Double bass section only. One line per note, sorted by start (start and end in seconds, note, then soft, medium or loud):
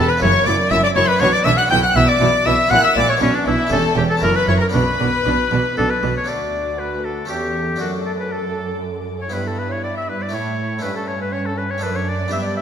0.22 0.30 F#1 loud
0.46 0.54 F#1 medium
0.71 0.79 F#1 medium
0.96 1.04 F#1 medium
1.20 1.28 B1 medium
1.45 1.53 B1 medium
1.70 1.78 B1 loud
1.96 2.04 B1 loud
2.21 2.29 B1 medium
2.46 2.54 B1 medium
2.71 2.79 A#1 medium
2.96 3.04 A#1 medium
3.21 3.29 B1 medium
3.46 3.54 B1 medium
3.71 3.79 E1 medium
3.97 4.05 E1 medium
4.22 4.30 F#1 medium
4.48 4.56 F#1 medium
4.74 4.82 B1 medium
5.00 5.08 B1 medium
5.26 5.34 B1 medium
5.52 5.60 B1 medium
5.78 5.86 B1 medium
6.04 6.12 B1 medium